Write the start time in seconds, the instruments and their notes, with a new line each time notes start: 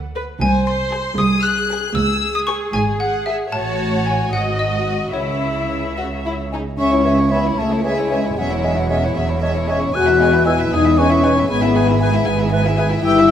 Already playing: cello section D2, double bass section D2
0.16 viola section B4, violin section B4
0.41 cello section C2, double bass section C2, viola section C5, violin section G#5, xylophone G#5
0.67 xylophone C6, violin section C6
0.92 violin section G#4
1.18 double bass section C2, cello section C2, viola section G#4, xylophone D#6, violin section D#6
1.43 xylophone F#6, violin section F#6
1.70 violin section G#4
1.95 cello section C#2, double bass section C#2, viola section G#4, xylophone E6, violin section E6
2.34 violin section D#6, xylophone D#6
2.47 violin section G#4 C#6, xylophone C#6
2.73 double bass section G#1, cello section G#2, xylophone G#5, violin section G#5
3.00 xylophone F#5, violin section F#5
3.26 violin section G#4 E5, xylophone E5
3.52 double bass section A1, cello section A2, violin section F#4 A5, viola section C#5, xylophone A5
4.06 xylophone G#5, violin section G#5
4.32 double bass section G#1, cello section G#2, violin section F#4 F#5, viola section D#5, xylophone F#5
4.59 xylophone D#5, violin section D#5
5.13 double bass section C#2, cello section C#3, violin section E4 C#5, xylophone C#5, viola section E5
5.97 violin section F#4
6.25 violin section E4
6.51 french horn section G#3, violin section D#4, flute G#5
6.78 cello section C#2, double bass section C#2, viola section C#4, french horn section C#4, violin section G#4 E5, flute C#6
6.91 viola section E4, violin section E4 C#5
7.04 bassoon E3, viola section C#4, violin section G#4 E5, clarinet C#5
7.18 viola section E4, violin section E4 C#5
7.31 bassoon E3, french horn section B3, viola section C#4, violin section G#4 E5, clarinet C#5, flute B5
7.45 violin section E4 C#5, viola section E4
7.57 double bass section C#2, cello section C#2, french horn section A3, viola section C#4, violin section G#4 E5, flute A5
7.71 viola section E4, violin section E4 C#5
7.83 bassoon E3, french horn section G#3, viola section C#4, violin section G#4 E5, clarinet C#5, flute G#5
7.97 violin section E4 C#5, viola section E4
8.10 bassoon E3, viola section C#4, violin section G#4 E5, clarinet C#5
8.24 violin section E4 C#5, viola section E4
8.36 double bass section E1, cello section E2, french horn section F#3, viola section C#4, violin section G#4 E5, flute F#5
8.50 violin section E4 C#5, viola section E4
8.63 bassoon G#3, viola section C#4, violin section G#4 E5, clarinet C#5
8.76 violin section E4 C#5, viola section E4
8.89 bassoon G#3, viola section C#4, violin section G#4 E5, clarinet C#5
9.02 violin section E4 C#5, viola section E4
9.15 double bass section E1, cello section E2, viola section C#4, violin section G#4 E5
9.28 violin section E4 C#5, viola section E4
9.41 bassoon G#3, viola section C#4, violin section G#4 E5, clarinet C#5
9.55 viola section E4, violin section E4 C#5
9.67 bassoon G#3, viola section C#4, french horn section C#4, violin section G#4 E5, clarinet C#5, flute C#6
9.80 viola section E4, violin section E4 C#5
9.94 double bass section E1, cello section E2, viola section B3, french horn section F#4, violin section G#4 G#5, flute F#6
10.07 viola section E4, violin section B4 E5
10.20 bassoon G#3, viola section B3, violin section G#4 G#5, clarinet B4
10.32 viola section E4, violin section B4 E5
10.45 bassoon G#3, viola section B3, french horn section E4, violin section G#4 G#5, clarinet B4, flute E6
10.58 viola section E4, violin section B4 E5
10.71 double bass section E1, cello section E2, viola section B3, french horn section D#4, violin section G#4 G#5, flute D#6
10.84 viola section E4, violin section B4 E5
10.96 bassoon G#3, viola section B3, french horn section C#4, violin section G#4 G#5, clarinet B4, flute C#6
11.09 viola section E4, violin section B4 E5
11.22 bassoon G#3, viola section B3, violin section G#4 G#5, clarinet B4
11.36 viola section E4, violin section B4 E5
11.49 double bass section G#1, cello section G#2, french horn section B3, viola section G#4, violin section B4 G#5, flute B5
11.61 viola section E4, violin section G#4 E5
11.74 bassoon E3, viola section G#4, clarinet B4, violin section B4 G#5
11.86 viola section E4, violin section G#4 E5
12.00 bassoon E3, viola section G#4, clarinet B4, violin section B4 G#5
12.12 viola section E4, violin section G#4 E5
12.26 double bass section G#1, cello section G#2, viola section G#4, violin section B4 G#5
12.39 viola section E4, violin section G#4 E5
12.51 bassoon E3, viola section G#4, clarinet B4, violin section B4 G#5
12.64 viola section E4, violin section G#4 E5
12.77 bassoon E3, viola section G#4, clarinet B4, violin section B4 G#5
12.90 viola section E4, violin section G#4 E5
13.02 double bass section G1, cello section G2, french horn section E4, viola section G4, violin section B4 G5, flute E6
13.16 viola section E4, violin section G4 E5